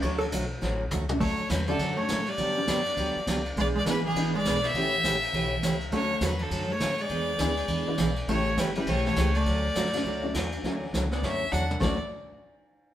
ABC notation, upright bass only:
X:1
M:4/4
L:1/8
Q:"Swing" 1/4=204
K:D
V:1 name="Upright bass" clef=bass
D,,2 B,,,2 A,,,2 C,,2 | D,, z E,,2 F,,2 A,,2 | G,,2 F,,2 D,, z C,,2 | B,,,2 A,,,2 ^G,,,2 B,,,2 |
A,,,2 _B,,,2 =B,,,2 C,,2 | D,,2 E,,2 F,,2 A,,2 | E,,2 D,,2 E,, z B,,,2 | A,,,2 G,,,2 B,,,2 C,,2 |
D,,2 F,,2 C,,2 E,,2 | D,,2 C,,2 F,,2 E,,2 | D,, z6 z |]